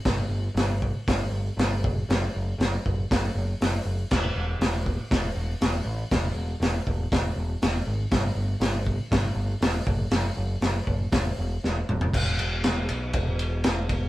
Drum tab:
CC |----------------|----------------|x---------------|----------------|
RD |----------------|----------------|----------------|----------------|
HH |o---o---o---o---|o---o---o---o---|----o---o---o---|o---o---o---o---|
SD |o---o---o---o---|o---o---o---o---|o---o---o---o---|o---o---o---o---|
T2 |----------------|----------------|----------------|----------------|
FT |----------------|----------------|----------------|----------------|
BD |o-----o-o-----o-|------o-o-------|o-----o-o-------|o-----o-o-------|

CC |----------------|----------------|x---------------|
RD |----------------|----------------|--x-x-x-x-x-x-x-|
HH |o---o---o---o---|o---o---o-------|----------------|
SD |o---o---o---o---|o---o---o---o---|----o-------o---|
T2 |----------------|--------------o-|----------------|
FT |----------------|---------------o|----------------|
BD |o-----o-o-----o-|------o-o-------|o-------o-----o-|